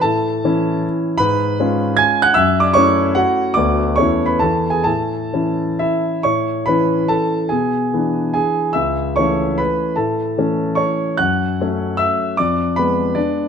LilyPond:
<<
  \new Staff \with { instrumentName = "Grand piano" } { \time 3/4 \key a \major \tempo 4 = 149 <a' a''>4. r4. | <b' b''>2 \tuplet 3/2 { <gis'' gis'''>4 <fis'' fis'''>8 } | \tuplet 3/2 { <e'' e'''>4 <d'' d'''>8 } <cis'' cis'''>4 <fis' fis''>4 | <d'' d'''>4 \tuplet 3/2 { <cis'' cis'''>4 <b' b''>8 <a' a''>4 <gis' gis''>8 } |
<a' a''>2 <e' e''>4 | <cis'' cis'''>4 <b' b''>4 <a' a''>4 | <gis' gis''>4. r8 <gis' gis''>4 | <e'' e'''>4 <cis'' cis'''>4 <b' b''>4 |
<a' a''>4. r8 <cis'' cis'''>4 | \key fis \minor <fis'' fis'''>2 <e'' e'''>4 | <d'' d'''>4 <ces'' ces'''>4 <d' d''>4 | }
  \new Staff \with { instrumentName = "Grand piano" } { \time 3/4 \key a \major a,4 <e cis' e'>2 | gis,4 <gis cis' eis'>2 | fis,4 <a cis' e'>2 | <d, a b fis'>4 <e, a cis' e'>4 <e, e b e'>4 |
a,4 <e cis' e'>2 | a,4 <e cis' e'>2 | b,4 <e b d'>2 | cis,4 <e a cis'>2 |
a,4 <e a cis'>2 | \key fis \minor fis,4 <fis a cis'>2 | f,4 <aes ces'>2 | }
>>